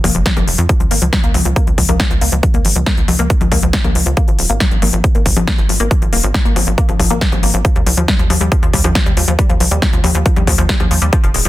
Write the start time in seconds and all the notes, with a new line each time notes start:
0.04 F1 A#3, kick, open hi-hat, high conga
0.15 F1 F3, closed hi-hat
0.26 F3, kick, snare, closed hi-hat
0.37 F1 A#3, closed hi-hat, high conga
0.47 F1 F3, open hi-hat
0.58 F2 F3, closed hi-hat
0.69 F3, kick, closed hi-hat
0.80 C#2 F3, closed hi-hat
0.91 G#1 A#3, open hi-hat
1.02 C#2 F3, closed hi-hat
1.13 F3, kick, snare, closed hi-hat
1.24 C#2 A#3, closed hi-hat
1.34 C#2 F3, open hi-hat, high conga
1.45 C#2 F3, closed hi-hat
1.56 A#3, kick, closed hi-hat
1.67 C#2 F3, closed hi-hat
1.78 C#2 F3, kick, open hi-hat
1.89 C#2 A#3, closed hi-hat, high conga
2.00 F3, kick, snare, closed hi-hat
2.11 C#2 F3, closed hi-hat
2.21 C#2 A#3, open hi-hat
2.32 C#2 F3, closed hi-hat
2.43 F3, kick, closed hi-hat
2.54 C#2 A#3, closed hi-hat
2.65 G#1 F3, open hi-hat
2.76 C#2 F3, closed hi-hat
2.86 A#3, kick, snare, closed hi-hat
2.97 C#2 F3, closed hi-hat
3.08 C#2 F3, open hi-hat, high conga
3.19 C#2 A#3, closed hi-hat
3.30 F3, kick, closed hi-hat
3.41 C#2 F3, closed hi-hat, high conga
3.52 C#2 A#3, kick, open hi-hat, high conga
3.63 C#2 F3, closed hi-hat
3.73 F3, kick, snare, closed hi-hat
3.84 C#2 A#3, closed hi-hat, high conga
3.95 C#2 F3, open hi-hat
4.06 C#2 F3, closed hi-hat
4.17 A#3, kick, closed hi-hat
4.28 G#1 F3, closed hi-hat
4.39 D#1 F3, open hi-hat
4.50 G#1 A#3, closed hi-hat
4.60 F3, kick, snare, closed hi-hat
4.71 G#1 F3, closed hi-hat
4.82 G#1 A#3, open hi-hat, high conga
4.93 G#1 F3, closed hi-hat
5.04 F3, kick, closed hi-hat
5.15 G#1 A#3, closed hi-hat
5.26 G#1 F3, kick, open hi-hat
5.37 G#1 F3, closed hi-hat, high conga
5.47 A#3, kick, snare, closed hi-hat
5.58 G#1 F3, closed hi-hat
5.69 G#1 F3, open hi-hat
5.80 G#1 A#3, closed hi-hat
5.91 F3, kick, closed hi-hat
6.02 G#1 F3, closed hi-hat
6.13 D#1 A#3, open hi-hat
6.24 G#1 F3, closed hi-hat
6.34 F3, kick, snare, closed hi-hat
6.45 G#1 A#3, closed hi-hat
6.56 G#1 F3, open hi-hat, high conga
6.67 G#1 F3, closed hi-hat
6.78 A#3, kick, closed hi-hat
6.89 G#1 F3, closed hi-hat, high conga
7.00 G#1 F3, kick, open hi-hat, high conga
7.10 G#1 A#3, closed hi-hat
7.21 F3, kick, snare, closed hi-hat
7.32 G#1 F3, closed hi-hat, high conga
7.43 G#1 A#3, open hi-hat
7.54 G#1 F3, closed hi-hat
7.65 F3, kick, closed hi-hat
7.76 D#2 G3, closed hi-hat
7.86 C2 F3, open hi-hat
7.97 D#2 F3, closed hi-hat
8.08 G3, kick, snare, closed hi-hat
8.19 D#2 F3, closed hi-hat
8.30 D#2 F3, open hi-hat, high conga
8.41 D#2 G3, closed hi-hat
8.52 F3, kick, closed hi-hat
8.62 D#2 F3, closed hi-hat
8.73 D#2 G3, kick, open hi-hat
8.84 D#2 F3, closed hi-hat, high conga
8.95 F3, kick, snare, closed hi-hat
9.06 D#2 G3, closed hi-hat
9.17 D#2 F3, open hi-hat
9.28 D#2 F3, closed hi-hat
9.39 G3, kick, closed hi-hat
9.49 D#2 F3, closed hi-hat
9.60 C2 F3, open hi-hat
9.71 D#2 G3, closed hi-hat
9.82 F3, kick, snare, closed hi-hat
9.93 D#2 F3, closed hi-hat
10.04 D#2 G3, open hi-hat, high conga
10.15 D#2 F3, closed hi-hat
10.26 F3, kick, closed hi-hat
10.36 D#2 G3, closed hi-hat, high conga
10.47 D#2 F3, kick, open hi-hat, high conga
10.58 D#2 F3, closed hi-hat
10.69 G3, kick, snare, closed hi-hat
10.80 D#2 F3, closed hi-hat, high conga
10.91 D#2 F3, open hi-hat
11.02 D#2 G3, closed hi-hat
11.13 F3, kick, closed hi-hat
11.23 F1 F3, closed hi-hat
11.34 D#1 G#3, open hi-hat
11.45 F1 F3, closed hi-hat